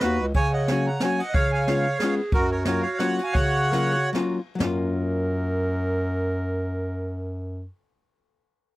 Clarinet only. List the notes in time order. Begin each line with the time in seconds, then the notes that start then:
Already playing: B4
0.36 C#5
1.29 D#5
1.34 C#5
2.00 G#4
2.33 F#4
3.71 A#4
3.94 F#4
4.60 A#4